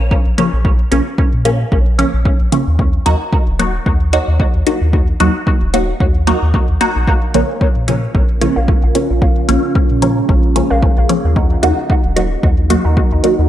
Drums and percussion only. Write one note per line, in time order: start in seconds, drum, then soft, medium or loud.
0.11 kick loud
0.38 closed hi-hat medium
0.65 kick loud
0.92 closed hi-hat medium
1.18 kick loud
1.45 closed hi-hat medium
1.72 kick loud
1.99 closed hi-hat medium
2.25 kick loud
2.52 closed hi-hat medium
2.79 kick loud
3.06 closed hi-hat medium
3.33 kick loud
3.59 closed hi-hat medium
3.86 kick loud
4.13 closed hi-hat medium
4.40 kick loud
4.67 closed hi-hat medium
4.93 kick loud
5.20 closed hi-hat medium
5.47 kick loud
5.74 closed hi-hat medium
6.00 kick loud
6.27 closed hi-hat medium
6.54 kick loud
6.81 closed hi-hat medium
7.07 kick loud
7.34 closed hi-hat medium
7.61 kick loud
7.88 closed hi-hat medium
8.15 kick loud
8.41 closed hi-hat medium
8.68 kick loud
8.95 closed hi-hat medium
9.22 kick loud
9.49 closed hi-hat medium
9.75 kick loud
10.02 closed hi-hat medium
10.29 kick loud
10.56 closed hi-hat medium
10.83 kick loud
11.09 closed hi-hat medium
11.36 kick loud
11.63 closed hi-hat medium
11.90 kick loud
12.17 closed hi-hat medium
12.43 kick loud
12.70 closed hi-hat medium
12.97 kick loud
13.24 closed hi-hat medium